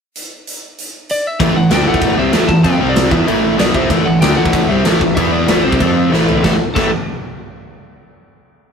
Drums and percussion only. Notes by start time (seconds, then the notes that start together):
0.15 closed hi-hat
0.47 closed hi-hat
0.78 closed hi-hat
1.09 closed hi-hat
1.40 kick, crash
1.71 snare, crash
1.94 kick
2.01 kick, crash
2.33 snare, crash
2.49 kick
2.64 kick, crash
2.96 snare, crash
3.11 kick
3.28 crash
3.59 snare, crash
3.74 kick
3.90 kick, crash
4.22 snare, crash
4.46 kick
4.53 kick, crash
4.85 snare, crash
5.01 kick
5.17 kick, crash
5.48 snare, crash
5.72 kick
5.80 kick, crash
6.13 snare
6.28 floor tom
6.44 kick, snare
6.76 kick, crash